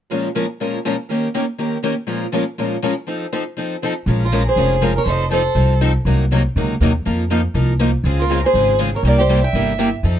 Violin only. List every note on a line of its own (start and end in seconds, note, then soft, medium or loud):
4.24 4.46 F4 soft
4.47 4.80 G#4 medium
4.96 5.08 A#4 medium
5.06 5.31 C5 medium
5.32 5.78 A4 medium
8.19 8.42 F4 soft
8.44 8.77 G#4 medium
8.95 9.06 A#4 medium
9.06 9.18 A#4 medium
9.18 9.41 G4 medium
9.42 9.88 E5 medium